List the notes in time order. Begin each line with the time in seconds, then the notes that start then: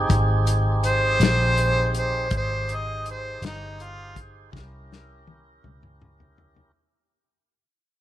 Already playing: C4 D#4 G4 G#4
0.09 G#1, kick, closed hi-hat
0.47 closed hi-hat
0.84 C5, closed hi-hat
1.20 A#1, snare, closed hi-hat
1.57 closed hi-hat
1.94 closed hi-hat
1.99 C5
2.31 G#1 D#4 G4 G#4 C5, kick, closed hi-hat
2.37 C5
2.69 closed hi-hat
2.75 D#5
3.06 closed hi-hat
3.11 C5
3.42 G1, snare, closed hi-hat
3.46 D#4
3.80 F4, closed hi-hat
4.16 kick, closed hi-hat
4.51 C2 C#4 E4 G4 A#4, kick
4.56 snare
4.93 snare
5.27 high tom
5.64 C#2, mid tom
5.83 mid tom
6.02 mid tom
6.20 floor tom
6.38 floor tom
6.56 floor tom